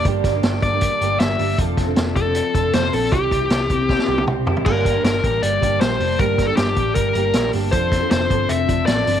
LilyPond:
<<
  \new Staff \with { instrumentName = "Lead electric guitar" } { \time 4/4 \key g \dorian \tempo 4 = 156 r4. d''4. e''4 | r4. a'4. c''8 a'8 | g'2. r4 | bes'4 bes'4 d''4 c''4 |
bes'8. a'16 g'4 bes'4. r8 | c''4 c''4 e''4 d''4 | }
  \new Staff \with { instrumentName = "Clean electric guitar" } { \time 4/4 \key g \dorian <g, bes d' g'>8 bes8 d'8 bes8 d'8 g'8 bes8 d'8 | <f a'>8 c'8 d'8 c'8 d'8 a'8 c'8 d'8 | <c g'>8 c'8 d'16 e'16 c'8 e'8 g'8 c'8 e'8 | g,8 bes8 d'8 g'8 g8 d'8 g'8 d'8 |
g,8 bes8 d'8 g'8 g8 d'8 g'8 d'8 | f8 c'8 d'8 g'16 a'16 c'8 d'8 a'8 d'8 | }
  \new Staff \with { instrumentName = "Steel-string acoustic guitar" } { \time 4/4 \key g \dorian <g, d g bes d' g'>8. <g bes d' g'>4 <g bes d' g'>8. <g bes d' g'>8 <g bes d' g'>8 <g bes d' g'>8 | <f c' d' a'>8. <c' d' a'>4 <c' d' a'>8. <f c' d' a'>8 <f c' d' a'>8 <f c' d' a'>8 | <c g c' e' g'>8. <c' e' g'>4 <c' e' g'>8. <g c' e' g'>8 <g c' e' g'>8 <g c' e' g'>8 | <g, d g bes d' g'>8. <g bes d' g'>8. <g bes d' g'>4 <g bes d' g'>4 <g bes d' g'>8 |
<g, d g bes d' g'>8. <g bes d' g'>8. <g bes d' g'>4 <g bes d' g'>4 <g bes d' g'>8 | <f c' d' a'>8. <c' d' a'>8. <f c' d' a'>4 <f c' d' a'>4 <f c' d' a'>8 | }
  \new Staff \with { instrumentName = "Picked electric bass" } { \clef bass \time 4/4 \key g \dorian g,,8 g,,8 g,,8 g,,8. r16 g,,8 g,,8 g,,8 | f,,8 f,,8 f,,8 f,,8. r16 f,,8 f,,8 bes,,8 | c,8 c,8 c,8 c,8. r16 c,8 c,8 f,,8 | g,,4 g,,8 a,,8 g,,8 g,,8 bes,,8 f,,8 |
g,,4 g,,8 a,,8 g,,8 g,,8 bes,,8 g,,8 | f,,4 f,,8 g,,8 f,,8 f,,8 a,,8 g,,8 | }
  \new DrumStaff \with { instrumentName = "Drums" } \drummode { \time 4/4 <hh bd>8 <hh bd sn>8 <hh sn>8 <hh bd>8 <hh bd>8 hh8 <hh sn>8 hho8 | <hh bd>8 <hh bd sn>8 <hh sn>8 <hh bd>8 hh8 <hh bd>8 <hh sn>8 hho8 | <hh bd>8 <hh bd>8 <hh sn>8 <hh bd>8 <bd sn>16 sn8 tommh16 toml8 tomfh16 tomfh16 | <cymc bd>8 <hh bd>8 <hh sn>8 <hh bd>8 hh8 <hh bd>8 <hh sn>8 hho8 |
<hh bd>8 <hh bd sn>8 <hh sn>8 <hh bd>8 <hh bd>8 hh8 <hh sn>8 hho8 | <hh bd>8 <hh bd sn>8 <hh sn>8 <hh bd>8 hh8 <hh bd>8 <hh sn>8 hho8 | }
>>